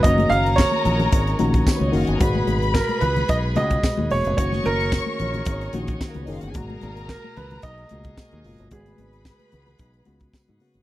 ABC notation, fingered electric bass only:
X:1
M:4/4
L:1/16
Q:1/4=111
K:F#mix
V:1 name="Fingered electric bass" clef=bass
F,,,2 F,,,3 z A,,,2 G,,,2 A,,,2 z C,, F,,, =G,,, | G,,,2 G,,,3 z C,,2 B,,,2 C,,2 z D,, E,,, ^E,,, | F,,,2 F,,,3 z A,,,2 G,,,2 A,,,2 z C,, F,,, =G,,, | G,,,2 G,,,3 z C,,2 B,,,2 C,,2 z D,, F,,, =G,,, |
G,,,2 G,,,3 z C,,2 B,,,2 C,,2 z G,, z =G,,, |]